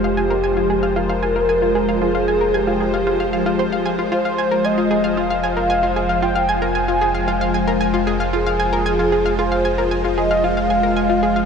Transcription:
0.00 4.10 F1 medium
0.00 11.45 F3 medium
0.00 11.45 G#3 medium
0.00 11.45 F4 medium
0.00 0.98 G4 loud
0.00 11.45 C5 medium
0.04 0.14 F5 medium
0.17 0.27 G#5 medium
0.30 0.40 A#4 medium
0.44 0.48 G#5 medium
0.57 0.67 F4 medium
0.70 0.74 G#4 medium
0.83 0.93 F5 medium
0.96 1.00 F4 medium
0.96 2.03 A#4 loud
1.09 1.19 F5 medium
1.23 1.33 G#5 medium
1.36 1.46 A#4 medium
1.49 1.53 G#5 medium
1.62 1.72 F4 medium
1.75 1.79 G#4 medium
1.89 1.98 F5 medium
2.01 2.06 F4 medium
2.01 2.56 G#4 loud
2.15 2.25 F5 medium
2.28 2.38 G#5 medium
2.41 2.51 A#4 medium
2.54 3.60 G4 medium
2.54 2.58 G#5 medium
2.67 2.77 F4 medium
2.80 2.85 G#4 medium
2.94 3.04 F5 medium
3.07 3.11 F4 medium
3.20 3.30 F5 medium
3.33 3.40 F5 medium
3.46 3.50 F4 medium
3.59 3.69 C5 medium
3.72 3.79 F5 medium
3.86 3.92 G#5 medium
3.99 4.05 F4 medium
4.12 11.45 F1 medium
4.12 4.16 F4 medium
4.12 4.66 C5 medium
4.25 4.35 F5 medium
4.38 4.48 G#5 medium
4.51 4.61 A#4 medium
4.64 5.19 D#5 medium
4.64 4.69 G#5 medium
4.78 4.88 F4 medium
4.91 4.95 G#4 medium
5.04 5.14 F5 medium
5.17 5.21 F4 medium
5.17 6.24 F5 loud
5.30 5.40 F5 medium
5.43 5.54 G#5 medium
5.57 5.67 A#4 medium
5.70 5.74 G#5 medium
5.83 5.93 F4 medium
5.96 6.00 G#4 medium
6.09 6.19 F5 medium
6.22 6.27 F4 medium
6.22 6.50 G5 loud
6.36 6.46 F5 medium
6.49 6.59 G#5 medium
6.49 8.07 G#5 loud
6.62 6.72 A#4 medium
6.75 6.79 G#5 medium
6.88 6.98 F4 medium
7.01 7.06 G#4 medium
7.15 7.25 F5 medium
7.28 7.32 F4 medium
7.41 7.51 F5 medium
7.54 7.64 G#5 medium
7.67 7.77 A#4 medium
7.81 7.85 G#5 medium
7.94 8.04 F4 medium
8.07 8.11 G#4 medium
8.20 8.30 F5 medium
8.33 8.37 F4 medium
8.33 9.40 G#4 medium
8.46 8.56 F5 medium
8.60 8.69 G#5 medium
8.73 8.83 A#4 medium
8.86 8.90 G#5 medium
8.99 9.09 F4 medium
9.12 9.16 G#4 medium
9.25 9.35 F5 medium
9.39 9.43 F4 medium
9.39 9.91 C5 loud
9.52 9.62 F5 medium
9.65 9.75 G#5 medium
9.78 9.88 A#4 medium
9.91 9.95 G#5 medium
10.04 10.14 F4 medium
10.18 10.21 G#4 medium
10.18 10.45 D#5 loud
10.31 10.41 F5 medium
10.44 10.48 F4 medium
10.44 11.45 F5 loud
10.57 10.67 F5 medium
10.70 10.80 G#5 medium
10.83 10.93 A#4 medium
10.97 11.00 G#5 medium
11.10 11.20 F4 medium
11.23 11.27 G#4 medium
11.36 11.45 F5 medium

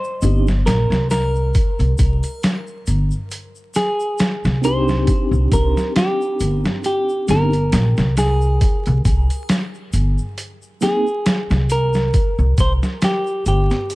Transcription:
0.00 0.66 C5 loud
0.00 shaker soft
0.22 0.62 G1 medium
0.22 0.46 C4 medium
0.22 0.46 D4 medium
0.22 0.47 D#4 medium
0.22 0.47 G4 medium
0.22 closed hi-hat medium
0.22 shaker medium
0.47 snare soft
0.47 shaker soft
0.66 0.88 A#1 medium
0.66 1.10 A#4 medium
0.66 snare loud
0.66 closed hi-hat medium
0.66 shaker medium
0.90 1.51 C2 medium
0.90 snare medium
0.90 shaker soft
1.11 2.84 A#4 medium
1.11 snare medium
1.11 closed hi-hat medium
1.11 triangle medium
1.11 shaker medium
1.35 shaker soft
1.54 kick loud
1.54 closed hi-hat medium
1.54 shaker medium
1.79 1.97 C2 medium
1.79 closed hi-hat soft
1.79 shaker soft
1.98 2.21 C2 medium
1.98 kick medium
1.98 closed hi-hat medium
1.98 shaker medium
2.23 closed hi-hat soft
2.23 triangle medium
2.23 shaker soft
2.43 snare loud
2.43 closed hi-hat medium
2.43 shaker soft
2.67 shaker soft
2.87 3.09 G1 medium
2.87 closed hi-hat medium
2.87 shaker medium
3.11 shaker soft
3.31 closed hi-hat medium
3.31 shaker medium
3.55 shaker soft
3.74 4.64 G#4 loud
3.74 snare soft
3.74 closed hi-hat medium
3.74 shaker medium
4.00 shaker soft
4.18 snare loud
4.18 closed hi-hat medium
4.18 shaker medium
4.44 5.04 C2 medium
4.44 snare medium
4.44 shaker soft
4.62 7.27 C4 medium
4.62 7.28 D4 medium
4.62 7.29 D#4 medium
4.62 5.53 C5 loud
4.62 closed hi-hat medium
4.62 shaker loud
4.67 7.30 G4 loud
4.88 snare soft
4.88 shaker soft
5.07 kick loud
5.07 closed hi-hat medium
5.07 shaker soft
5.31 5.49 C2 medium
5.31 shaker soft
5.52 5.74 C2 medium
5.52 5.97 A#4 medium
5.52 kick medium
5.52 closed hi-hat medium
5.52 shaker medium
5.77 snare soft
5.77 shaker soft
5.96 6.85 G4 medium
5.96 snare loud
5.96 closed hi-hat medium
5.96 shaker soft
6.21 shaker soft
6.40 6.62 G1 medium
6.40 closed hi-hat medium
6.40 shaker medium
6.65 snare medium
6.65 shaker soft
6.84 7.30 G4 medium
6.84 closed hi-hat medium
6.84 shaker medium
7.09 shaker soft
7.28 7.68 G1 medium
7.28 7.51 C4 medium
7.28 7.52 D4 medium
7.28 7.52 D#4 medium
7.28 7.53 G4 medium
7.28 8.18 A#4 medium
7.28 snare soft
7.28 closed hi-hat medium
7.28 shaker medium
7.53 closed hi-hat soft
7.53 shaker soft
7.72 7.94 A#1 medium
7.72 snare loud
7.72 closed hi-hat medium
7.72 shaker medium
7.97 8.57 C2 medium
7.97 snare medium
7.97 shaker soft
8.17 9.90 G#4 medium
8.17 snare medium
8.17 closed hi-hat medium
8.17 triangle medium
8.17 shaker loud
8.41 shaker soft
8.61 kick loud
8.61 closed hi-hat medium
8.61 shaker soft
8.86 9.03 C2 medium
8.86 closed hi-hat soft
8.86 shaker soft
9.05 9.27 C2 medium
9.05 kick loud
9.05 closed hi-hat medium
9.05 shaker medium
9.30 closed hi-hat soft
9.30 triangle medium
9.30 shaker soft
9.49 snare loud
9.49 closed hi-hat medium
9.49 shaker soft
9.74 shaker soft
9.93 10.15 G1 medium
9.93 closed hi-hat medium
9.93 shaker medium
10.18 shaker soft
10.38 closed hi-hat medium
10.38 shaker soft
10.62 shaker soft
10.81 11.04 A#3 medium
10.81 11.05 C4 medium
10.81 11.05 D#4 medium
10.81 11.71 G#4 medium
10.81 11.06 G#4 medium
10.81 snare soft
10.81 closed hi-hat medium
10.81 shaker medium
11.07 shaker soft
11.26 snare loud
11.26 closed hi-hat medium
11.26 shaker soft
11.50 12.10 C2 medium
11.50 snare medium
11.50 shaker soft
11.70 12.60 A#4 loud
11.70 closed hi-hat medium
11.70 shaker medium
11.93 snare soft
11.93 shaker soft
12.14 kick loud
12.14 closed hi-hat medium
12.14 shaker soft
12.39 12.56 C2 medium
12.39 shaker soft
12.58 12.80 C2 medium
12.58 12.72 C5 loud
12.58 kick medium
12.58 closed hi-hat medium
12.58 shaker medium
12.83 snare soft
12.83 shaker soft
13.02 13.47 G4 medium
13.02 snare loud
13.02 closed hi-hat medium
13.02 shaker soft
13.27 shaker soft
13.46 13.68 G1 medium
13.46 13.95 G4 medium
13.46 closed hi-hat medium
13.46 shaker medium
13.70 snare soft
13.70 shaker soft
13.90 closed hi-hat medium
13.90 shaker soft

